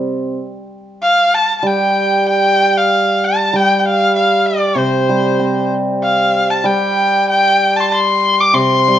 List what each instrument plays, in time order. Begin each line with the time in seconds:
Already playing: hammered dulcimer C3 C4
1.02 erhu F5
1.34 erhu A5
1.58 erhu A5
1.63 hammered dulcimer G3, erhu G5
2.28 erhu G5
2.77 erhu F5
3.24 erhu A5
3.53 hammered dulcimer G3, erhu G5
3.79 erhu G5
3.85 erhu F5
4.16 erhu F5
4.46 erhu D5
4.76 hammered dulcimer C3, erhu C5
5.09 hammered dulcimer G3
5.40 hammered dulcimer C4
6.03 erhu F5
6.50 erhu A5
6.64 hammered dulcimer G3, erhu G5
7.29 erhu G5
7.76 erhu A5
7.80 erhu A5 C6
7.92 erhu C6
8.40 erhu D6
8.54 hammered dulcimer C3, erhu C6
8.88 hammered dulcimer G3